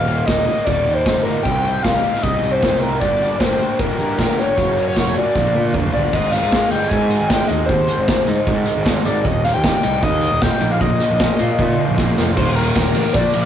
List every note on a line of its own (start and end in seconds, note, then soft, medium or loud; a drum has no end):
0.00 0.21 D#1 medium
0.00 0.27 D#2 medium
0.00 0.28 A#2 medium
0.00 0.27 F5 medium
0.07 0.26 D#3 soft
0.07 0.28 G3 medium
0.07 0.28 A#3 medium
0.07 0.30 D#4 medium
0.07 closed hi-hat soft
0.26 0.44 D#1 medium
0.26 0.49 D#3 medium
0.26 0.49 G3 medium
0.26 0.47 A#3 medium
0.26 0.64 D#5 medium
0.26 kick loud
0.26 snare loud
0.26 closed hi-hat medium
0.30 0.46 D#4 medium
0.47 0.67 D#3 medium
0.47 0.68 G3 medium
0.47 0.68 A#3 medium
0.47 0.69 D#4 medium
0.47 closed hi-hat medium
0.65 0.83 D#1 medium
0.65 1.25 D#2 medium
0.65 1.26 A#2 medium
0.65 1.04 D#3 medium
0.65 1.06 G3 medium
0.65 0.95 D5 medium
0.65 kick medium
0.65 closed hi-hat medium
0.69 1.06 A#3 medium
0.69 1.07 D#4 medium
0.86 1.03 D#2 medium
0.86 closed hi-hat medium
0.94 1.22 C5 medium
1.05 1.14 G1 medium
1.05 1.28 D#3 medium
1.05 1.27 G3 medium
1.05 1.26 A#3 medium
1.05 1.24 D#4 medium
1.05 kick loud
1.05 snare loud
1.05 closed hi-hat medium
1.15 1.40 G1 medium
1.23 1.44 D#4 medium
1.23 1.42 A#4 medium
1.23 closed hi-hat medium
1.27 1.45 D#3 soft
1.27 1.46 G3 medium
1.27 1.44 A#3 medium
1.43 1.78 C2 medium
1.43 1.84 C3 medium
1.43 1.83 G3 medium
1.43 1.66 C4 medium
1.43 1.64 D#4 medium
1.43 1.84 G5 medium
1.43 kick loud
1.43 closed hi-hat medium
1.48 1.64 G4 medium
1.64 1.84 C4 soft
1.64 1.85 D#4 soft
1.64 1.86 G4 medium
1.64 closed hi-hat medium
1.82 2.01 C2 medium
1.82 2.22 G3 medium
1.82 2.05 C4 medium
1.82 2.03 D#4 medium
1.82 2.24 F5 loud
1.82 kick loud
1.82 snare loud
1.82 closed hi-hat medium
1.87 2.02 G4 medium
2.03 2.22 C4 medium
2.03 2.23 D#4 medium
2.03 2.24 G4 medium
2.03 closed hi-hat medium
2.15 snare soft
2.22 2.40 C2 medium
2.22 2.81 C3 medium
2.22 2.60 G3 medium
2.22 2.61 C4 medium
2.22 2.62 D#4 medium
2.22 2.63 G4 medium
2.22 2.53 D#5 medium
2.22 kick loud
2.22 closed hi-hat medium
2.43 2.59 C2 medium
2.43 closed hi-hat medium
2.51 2.82 C5 medium
2.61 2.72 D#1 medium
2.61 2.99 G3 medium
2.61 2.83 C4 medium
2.61 2.82 D#4 medium
2.61 2.80 G4 medium
2.61 kick medium
2.61 snare loud
2.61 closed hi-hat medium
2.72 2.96 C2 medium
2.81 3.02 C4 medium
2.81 3.01 D#4 medium
2.81 3.00 G4 medium
2.81 3.00 A#4 medium
2.81 closed hi-hat medium
3.00 3.34 G1 medium
3.00 3.40 G2 medium
3.00 3.41 D3 medium
3.00 3.23 G3 medium
3.00 3.23 A#3 medium
3.00 3.20 D4 medium
3.00 3.41 D5 medium
3.00 kick medium
3.00 closed hi-hat medium
3.04 3.19 G4 medium
3.20 3.39 G3 soft
3.20 3.41 A#3 soft
3.20 3.41 D4 soft
3.20 3.42 G4 soft
3.20 closed hi-hat medium
3.39 3.57 G1 medium
3.39 3.62 G3 medium
3.39 3.62 A#3 medium
3.39 3.60 D4 medium
3.39 3.81 C5 medium
3.39 kick medium
3.39 snare loud
3.39 closed hi-hat medium
3.43 3.58 G4 medium
3.60 3.80 G3 soft
3.60 3.80 A#3 medium
3.60 3.81 D4 medium
3.60 3.81 G4 medium
3.60 closed hi-hat soft
3.79 3.96 G1 medium
3.79 4.38 G2 medium
3.79 4.38 D3 medium
3.79 4.17 G3 medium
3.79 4.18 A#3 medium
3.79 4.19 D4 medium
3.79 4.20 G4 medium
3.79 4.17 A#4 medium
3.79 kick loud
3.79 closed hi-hat medium
3.99 4.16 G2 medium
3.99 closed hi-hat medium
4.18 4.28 A#1 medium
4.18 4.40 G3 medium
4.18 4.39 A#3 medium
4.18 4.38 D4 medium
4.18 4.36 G4 medium
4.18 4.36 A#4 medium
4.18 kick medium
4.18 snare medium
4.18 closed hi-hat medium
4.28 4.53 G1 medium
4.38 4.58 G3 medium
4.38 4.57 A#3 medium
4.38 4.57 D4 medium
4.38 4.56 G4 medium
4.38 4.84 C#5 medium
4.38 closed hi-hat medium
4.57 4.96 F#1 medium
4.57 4.96 F#2 medium
4.57 4.97 C#3 medium
4.57 4.79 F#3 medium
4.57 4.79 A#3 medium
4.57 4.77 C#4 medium
4.57 4.76 F#4 medium
4.57 kick medium
4.57 closed hi-hat medium
4.77 4.95 F#3 soft
4.77 4.96 A#3 soft
4.77 4.97 C#4 medium
4.77 4.98 F#4 soft
4.77 closed hi-hat medium
4.88 5.18 C#5 medium
4.96 5.13 F1 medium
4.96 5.18 F#3 medium
4.96 5.17 A#3 medium
4.96 5.16 C#4 medium
4.96 5.14 F#4 medium
4.96 kick medium
4.96 snare loud
4.96 closed hi-hat medium
5.16 5.36 F#3 soft
5.16 5.35 A#3 medium
5.16 5.35 C#4 medium
5.16 5.34 F#4 medium
5.16 5.75 D5 medium
5.16 closed hi-hat medium
5.35 5.52 A#1 medium
5.35 5.94 A#2 medium
5.35 5.73 F3 medium
5.35 5.74 A#3 medium
5.35 5.75 D4 medium
5.35 5.77 F4 medium
5.35 kick loud
5.35 snare soft
5.55 5.71 A#2 medium
5.55 high tom medium
5.74 5.86 D2 medium
5.74 6.12 F3 medium
5.74 5.95 A#3 medium
5.74 5.94 D4 medium
5.74 kick medium
5.74 mid tom medium
5.78 5.92 F4 medium
5.85 6.09 G1 medium
5.93 6.14 A#3 medium
5.93 6.13 D4 medium
5.93 6.12 F4 medium
5.93 6.15 D5 medium
5.93 floor tom medium
6.13 6.38 G#1 medium
6.13 7.11 G#2 medium
6.13 6.31 D#5 medium
6.13 kick medium
6.13 crash loud
6.32 7.10 D#3 medium
6.32 6.72 F5 medium
6.32 snare soft
6.32 closed hi-hat medium
6.42 6.59 G#2 medium
6.52 7.29 G#3 medium
6.52 kick loud
6.52 snare loud
6.70 6.88 G1 medium
6.70 8.27 D#4 medium
6.70 6.89 G5 loud
6.70 closed hi-hat medium
6.88 7.16 G#2 medium
6.88 8.47 C4 medium
6.88 7.29 G#5 loud
6.88 kick loud
7.10 7.49 D#3 medium
7.10 closed hi-hat medium
7.20 7.36 G#1 medium
7.28 8.07 G#3 medium
7.28 7.49 G5 loud
7.28 kick loud
7.28 snare loud
7.47 7.66 D#2 medium
7.47 7.87 D#3 medium
7.47 7.65 D#5 medium
7.47 closed hi-hat medium
7.66 7.86 D#2 medium
7.66 8.66 G#2 medium
7.66 8.42 C5 medium
7.66 kick loud
7.88 8.65 D#3 soft
7.88 closed hi-hat loud
7.98 8.15 G#1 medium
8.08 8.84 G#3 medium
8.08 kick loud
8.08 snare loud
8.27 8.36 G#2 medium
8.27 9.83 D#4 medium
8.27 closed hi-hat medium
8.47 8.63 G#2 medium
8.47 9.25 C4 medium
8.47 kick loud
8.66 9.05 D#3 medium
8.66 closed hi-hat medium
8.76 9.01 G#1 medium
8.86 9.25 G#3 medium
8.86 kick loud
8.86 snare loud
9.05 9.22 G#1 loud
9.05 9.25 D#3 medium
9.05 9.24 D5 medium
9.05 closed hi-hat medium
9.25 9.50 D#1 medium
9.25 10.22 D#2 medium
9.25 9.43 D#5 medium
9.25 kick loud
9.44 10.42 A#2 medium
9.44 9.53 F5 medium
9.44 snare soft
9.44 closed hi-hat medium
9.54 9.71 D#2 medium
9.54 9.81 G5 loud
9.64 10.40 G3 medium
9.64 kick loud
9.64 snare loud
9.83 10.00 C2 medium
9.83 11.03 D#4 medium
9.83 10.02 G5 loud
9.83 closed hi-hat medium
10.03 10.27 D#2 loud
10.03 11.20 A#3 medium
10.03 10.43 D#5 loud
10.03 kick loud
10.22 10.60 D#3 medium
10.22 closed hi-hat medium
10.32 10.48 D#1 medium
10.42 10.81 G3 medium
10.42 10.72 G5 loud
10.42 kick loud
10.42 snare medium
10.60 10.77 A#1 medium
10.60 10.81 D#3 medium
10.60 closed hi-hat medium
10.71 10.81 F5 medium
10.81 10.97 A#1 medium
10.81 11.78 A#2 medium
10.81 11.94 D#5 medium
10.81 kick loud
11.00 11.77 F3 medium
11.00 snare soft
11.00 closed hi-hat loud
11.10 11.26 A#1 medium
11.20 11.97 A#3 medium
11.20 kick loud
11.20 snare loud
11.39 11.48 A#2 loud
11.39 12.36 F4 medium
11.39 closed hi-hat medium
11.58 11.75 A#2 loud
11.58 12.37 D#4 medium
11.58 kick loud
11.58 high tom medium
11.78 12.16 F3 medium
11.88 12.13 A#1 medium
11.98 12.37 A#3 medium
11.98 kick loud
11.98 snare medium
12.18 12.34 F1 medium
12.18 12.37 F3 medium
12.18 snare medium
12.37 12.70 D#1 medium
12.37 12.55 D#2 medium
12.37 12.56 A#2 loud
12.37 12.57 D#3 loud
12.37 12.55 C5 medium
12.37 kick loud
12.37 crash loud
12.56 12.75 D#2 medium
12.56 12.76 A#2 medium
12.56 12.76 D#3 medium
12.56 13.15 A#4 medium
12.56 ride medium
12.75 12.92 D#1 medium
12.75 12.94 D#2 medium
12.75 12.95 A#2 medium
12.75 12.95 D#3 medium
12.75 kick loud
12.75 snare loud
12.75 ride loud
12.95 13.03 A1 medium
12.95 13.13 D#2 medium
12.95 13.13 A#2 medium
12.95 13.14 D#3 medium
12.95 ride medium
13.13 13.23 A#1 loud
13.13 13.33 A#2 medium
13.13 13.33 F3 loud
13.13 13.34 A#3 medium
13.13 13.41 D5 medium
13.13 kick loud
13.13 ride medium
13.34 13.45 A#1 medium
13.34 13.45 A#2 medium
13.34 13.45 F3 medium
13.34 13.45 A#3 medium
13.34 ride medium
13.42 13.45 D5 medium